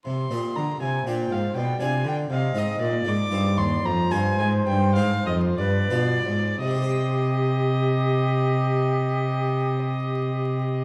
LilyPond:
<<
  \new Staff \with { instrumentName = "Violin" } { \time 6/8 \key c \minor \tempo 4. = 70 c'''4 bes''8 aes''8 g''8 f''8 | g''8 aes''8 g''8 f''8 ees''8 d''8 | d'''4 c'''8 bes''8 aes''8 aes''8 | g''8 f''8 ees''8 d''4. |
ees''2.~ | ees''2. | }
  \new Staff \with { instrumentName = "Flute" } { \time 6/8 \key c \minor r4. c''4. | d''4. ees''4. | d''4. c''4.~ | c''4. b'8. r8. |
g'2.~ | g'2. | }
  \new Staff \with { instrumentName = "Harpsichord" } { \time 6/8 \key c \minor r8 <c' g' ees''>4 r8 <d' f' d''>4 | r8 <d' f' d''>4 r8 <c' ees' ees''>4 | aes8 <c' ees' c''>4 r8 <c' f' c''>4 | r8 <c' ees' c''>4 r8 <d' f' b'>4 |
<c c' g' c'' g''>2.~ | <c c' g' c'' g''>2. | }
  \new Staff \with { instrumentName = "Harpsichord" } { \clef bass \time 6/8 \key c \minor c8 bes,8 d8 c8 bes,8 aes,8 | b,8 c8 d8 c8 aes,8 bes,8 | aes,8 g,8 ees,8 f,8 g,8 aes,8 | g,8 aes,8 f,8 g,8 b,8 aes,8 |
r2. | r2. | }
  \new Staff \with { instrumentName = "Cello" } { \clef bass \time 6/8 \key c \minor c8 bes,8 d8 c8 bes,8 aes,8 | b,8 c8 d8 c8 aes,8 bes,8 | aes,8 g,8 ees,8 f,8 g,8 aes,8 | g,8 aes,8 f,8 g,8 b,8 aes,8 |
c2.~ | c2. | }
>>